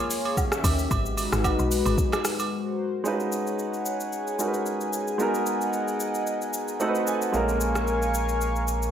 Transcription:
Already playing: analog synth pad A#3 F4 G#4 C#5
0.10 open hi-hat, shaker
0.25 high agogo
0.37 analog synth pad D#3 C#4 G4 E5, kick, low woodblock, shaker
0.52 cross-stick, shaker
0.64 log drum bass D#2, kick, open hi-hat, high agogo, shaker
0.79 shaker
0.91 log drum bass G#1, analog synth pad G#3 D#4 F#4 B4, kick, high agogo, shaker
1.06 shaker
1.17 open hi-hat, high agogo, shaker
1.33 log drum bass G#1, cross-stick, shaker
1.44 kick, high agogo, low woodblock, shaker
1.59 log drum bass B1, shaker
1.71 open hi-hat, shaker
1.86 log drum bass G#1, high agogo, shaker
1.98 kick, shaker
2.12 cross-stick, high agogo, shaker
2.25 cross-stick, open hi-hat, shaker
2.39 high agogo, shaker
2.52 analog synth pad F#4 A#4 C5
3.04 grand piano G#3 C#4 D#4 F4, analog synth pad G#4 C#5 F#5 G#5, shaker
3.08 grand piano B4
3.13 grand piano F#4
3.20 shaker
3.32 shaker
3.47 shaker
3.59 shaker
3.74 shaker
3.86 shaker
4.00 shaker
4.12 shaker
4.27 shaker
4.39 grand piano G#3 C#4 D#4 F#4 A#4, shaker
4.47 grand piano B4
4.54 shaker
4.66 shaker
4.81 shaker
4.93 shaker
5.08 shaker
5.18 grand piano G#3 B3 D#4 F#4, analog synth pad D#5 F#5, shaker
5.22 grand piano A#4
5.34 shaker
5.46 shaker
5.61 shaker
5.73 shaker
5.88 shaker
6.00 shaker
6.15 shaker
6.27 shaker
6.42 shaker
6.53 shaker
6.68 shaker
6.80 grand piano A3 C4 D#4 F#4 A4 F#5, analog synth pad A4 D#5 F#5 A5, shaker
6.88 grand piano B4
6.95 shaker
7.07 grand piano G#5, shaker
7.22 shaker
7.32 sub bass A#1, grand piano G#3 A#3 C#4 F4, analog synth pad A#4 F5 G#5 C#6, shaker
7.36 grand piano A#4
7.49 shaker
7.61 shaker
7.75 cross-stick, shaker
7.87 shaker
8.02 shaker
8.14 shaker
8.29 shaker
8.41 shaker
8.56 shaker
8.68 shaker
8.82 shaker

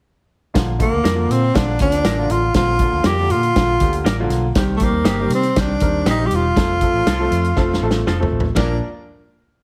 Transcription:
0.54 fingered electric bass A#1, grand piano D3 F3 A#3 F4, kick, snare, closed hi-hat
0.79 grand piano D3 F3 A#3 F4, tenor saxophone A#3, kick, closed hi-hat
0.92 fingered electric bass D2
1.04 fingered electric bass F2, clean electric guitar F4 A#4 D5, snare, closed hi-hat
1.15 grand piano D3 F3 A#3 F4
1.29 fingered electric bass A#2, tenor saxophone C4, closed hi-hat
1.54 fingered electric bass A#1, grand piano D3 F3 A#3 F4, tenor saxophone D4, kick, snare, closed hi-hat
1.79 fingered electric bass D2, grand piano D3 F3 A#3 C4, tenor saxophone D4, kick, closed hi-hat
1.92 closed hi-hat
2.04 fingered electric bass A1, clean electric guitar F4 A#4 D5, snare, closed hi-hat
2.18 grand piano D3 F3 A#3 F4
2.30 fingered electric bass A1, tenor saxophone F4, closed hi-hat
2.54 fingered electric bass A#1, grand piano D3 F3 A#3 C4, tenor saxophone F4, kick, snare, closed hi-hat
2.79 grand piano D3 F3 A#3 F4, kick, closed hi-hat
2.92 fingered electric bass D2
3.04 fingered electric bass F2, clean electric guitar F4 A#4 D5, tenor saxophone G4, snare, closed hi-hat
3.19 grand piano D3 F3 A#3 F4
3.30 fingered electric bass A#2, tenor saxophone F4, closed hi-hat
3.43 closed hi-hat
3.56 fingered electric bass A#1, grand piano D3 F3 A#3 F4, kick, snare, closed hi-hat
3.80 fingered electric bass D2, grand piano D3 F3 A#3 G4, kick, closed hi-hat
3.93 closed hi-hat
4.05 fingered electric bass A1, clean electric guitar F4 A#4 D5, snare, closed hi-hat
4.19 grand piano D3 F3 A#3 F4
4.30 fingered electric bass B1, snare, closed hi-hat
4.55 grand piano D#3 G3 C4 G4, kick, snare, closed hi-hat
4.77 tenor saxophone A3, kick, closed hi-hat
4.81 grand piano D#3 G3 C4 G4, tenor saxophone A#3
4.92 fingered electric bass D#2
5.04 fingered electric bass G1, clean electric guitar D#4 G4 C5, snare, closed hi-hat
5.20 grand piano D#3 G3 C4 G4
5.29 fingered electric bass C3, closed hi-hat
5.35 tenor saxophone C4
5.43 closed hi-hat
5.56 fingered electric bass C2, grand piano D#3 G3 C4 G4, kick, snare, closed hi-hat
5.60 tenor saxophone D4
5.80 fingered electric bass D#2, grand piano D#3 G3 C4 A#4, kick, closed hi-hat
6.05 fingered electric bass A#1, clean electric guitar D#4 G4 C5, snare, closed hi-hat
6.10 tenor saxophone D#4
6.18 grand piano D#3 G3 C4 G4
6.26 tenor saxophone G4
6.31 fingered electric bass E1, closed hi-hat
6.35 tenor saxophone F4
6.56 fingered electric bass F1, grand piano F3 A3 C4 A4, kick, snare, closed hi-hat
6.81 grand piano F3 A3 C4 A4, kick, closed hi-hat
6.94 fingered electric bass A1
7.06 fingered electric bass C2, clean electric guitar F4 A4 C5, snare, closed hi-hat
7.20 grand piano F3 A3 C4 A4
7.31 fingered electric bass F2, closed hi-hat
7.44 closed hi-hat
7.56 fingered electric bass F1, grand piano F3 A3 C4 A4, kick, snare
7.74 snare
7.81 fingered electric bass A1, grand piano F3 A3 C4 A4
7.91 snare
8.06 fingered electric bass F1, clean electric guitar F4 A4 C5, snare
8.20 grand piano F3 A3 C4 A4, floor tom
8.31 fingered electric bass A1
8.40 floor tom
8.56 fingered electric bass A#1, grand piano F3 A#3 D4 A#4, tenor saxophone D4, clean electric guitar F4 A#4 D5, kick, snare, ride bell

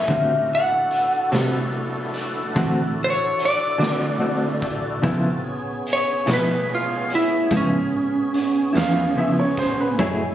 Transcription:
Already playing: lead electric guitar E5
0.07 cello D3, clean electric guitar D3 A3 C4 F#4, tonewheel organ C#4 F4 G4 A#4, kick, closed hi-hat
0.49 tonewheel organ D4 E4 F#4 A4
0.55 lead electric guitar F#5
0.91 closed hi-hat
1.32 cello C3, clean electric guitar A3 C4 F#4, snare, closed hi-hat
2.14 closed hi-hat
2.55 clean electric guitar D3 A3 C4 F#4, cello E3, kick, closed hi-hat
3.04 lead electric guitar C#5
3.39 closed hi-hat
3.45 lead electric guitar D5
3.78 cello D3, clean electric guitar A3 C4 F#4, closed hi-hat
3.83 snare
4.18 clean electric guitar D3 A3 C4 F#4
4.62 kick, closed hi-hat
5.02 clean electric guitar C#3 F3 B3 E4, cello C#3, tonewheel organ C4 F4 F#4 A4, kick, closed hi-hat
5.44 tonewheel organ B3 C#4 G#4
5.87 closed hi-hat
5.93 lead electric guitar C#5
6.26 cello B2, clean electric guitar F3 B3 E4, snare, closed hi-hat
6.33 lead electric guitar B4
6.75 lead electric guitar F4
7.10 closed hi-hat
7.15 lead electric guitar E4
7.51 cello G#2, clean electric guitar C#3 F3 B3 E4, kick, closed hi-hat
7.57 lead electric guitar C#4
8.34 closed hi-hat
8.73 cello E2, clean electric guitar F3 B3 E4, closed hi-hat
8.77 upright piano F5, snare
9.15 clean electric guitar C#3 F3 B3 E4, upright piano E5
9.39 upright piano C#5
9.57 upright piano C5, kick, snare, closed hi-hat
9.81 upright piano B4
9.97 cello F#2, clean electric guitar F#3 A3 E4 G#4, tonewheel organ G#3 A3 C#4 E4, upright piano C#5, kick, closed hi-hat

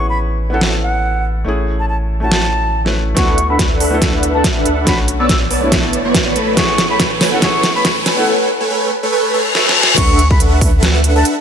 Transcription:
Already playing: sub bass A1, felt piano B3 C#4 E4 G#4
0.09 flute B5
0.50 felt piano B3 C#4 E4, flute F#5
0.54 felt piano A4
0.61 snare
0.83 flute F#5
1.44 sub bass A1, felt piano A3 C#4 E4
1.48 felt piano G#4
1.80 flute A5
1.89 flute A5
2.20 felt piano A3 C#4 E4, flute A5
2.24 felt piano F#4
2.32 snare
2.85 felt piano A3 C#4 E4 B4, snare
3.15 sub bass D2, felt piano A3 B3 E4, supersaw synth D4 A4 B4 E5 F#5, flute C#6, kick, snare, closed hi-hat, riser
3.19 felt piano F#4
3.38 closed hi-hat
3.50 supersaw synth D4 A4 B4 E5 F#5, flute B5
3.59 kick, snare, closed hi-hat
3.80 supersaw synth D4 A4 B4 E5 F#5, open hi-hat
3.90 felt piano A3 B3 E4 A4
4.02 kick, snare, closed hi-hat
4.23 closed hi-hat
4.35 supersaw synth D4 A4 B4 E5 F#5, flute A5
4.44 kick, snare, closed hi-hat
4.56 supersaw synth D4 A4 B4 E5 F#5
4.66 sub bass D2, closed hi-hat
4.85 sub bass B1, felt piano A3 C#4 D4 F#4, flute B5, kick, snare, closed hi-hat
5.08 closed hi-hat
5.20 supersaw synth B3 B4 C#5 D5 A5, flute E6
5.29 flute E6, kick, snare, closed hi-hat
5.51 supersaw synth B3 B4 C#5 D5 A5, open hi-hat
5.61 felt piano A3 D4 E4
5.72 kick, snare, closed hi-hat
5.93 sub bass F#1, closed hi-hat
6.05 supersaw synth B3 B4 C#5 D5 C#6
6.14 kick, snare, closed hi-hat
6.36 sub bass A1, supersaw synth A3 A4 B4 C#5 B5, closed hi-hat
6.55 sub bass A1, supersaw synth A3 A4 B4 C#5 G#5, felt piano B3 C#4 E4, flute C#6, kick, snare, closed hi-hat
6.59 felt piano G#4
6.78 snare, closed hi-hat
6.90 supersaw synth A3 A4 B4 C#5 G#5, flute B5
7.00 kick, snare, closed hi-hat
7.21 supersaw synth A3 A4 B4 C#5 G#5, snare, open hi-hat
7.31 felt piano B3 C#4 E4, flute F#5
7.35 felt piano A4
7.40 supersaw synth A3 A4 G#5, felt piano B3 C#4 E4, flute C#6, kick, snare, closed hi-hat
7.44 felt piano G#4
7.63 snare, closed hi-hat
7.75 supersaw synth A3 A4 B4 C#5 G#5, flute B5
7.85 kick, snare, closed hi-hat
8.06 sub bass A1, supersaw synth A3 A4 B4 C#5 G#5, snare, closed hi-hat
8.16 felt piano B3 C#4 E4 A4, flute F#5
8.27 supersaw synth A3 A4 B4 C#5 G#5
8.60 supersaw synth A3 A4 B4 C#5 G#5
8.70 supersaw synth A3 A4 B4 C#5 G#5
9.03 supersaw synth A3 A4 B4 C#5 G#5
9.12 supersaw synth A3 A4 B4 C#5 G#5, reverse cymbal
9.34 supersaw synth A3 A4 B4 C#5 G#5
9.55 supersaw synth A3 A4 B4 C#5 G#5, snare
9.69 snare
9.76 supersaw synth A3 A4 B4 C#5 G#5
9.83 snare
9.98 sub bass D2, supersaw synth D4 A4 B4 E5 F#5, flute C#6, kick, closed hi-hat, crash
10.19 closed hi-hat
10.31 supersaw synth D4 A4 B4 E5 F#5, flute B5, kick
10.40 closed hi-hat
10.61 supersaw synth D4 A4 B4 E5, kick, open hi-hat
10.83 snare, closed hi-hat
11.04 closed hi-hat
11.16 supersaw synth D4 A4 B4 E5 F#5, flute A5
11.25 closed hi-hat
11.37 supersaw synth D4 A4 B4

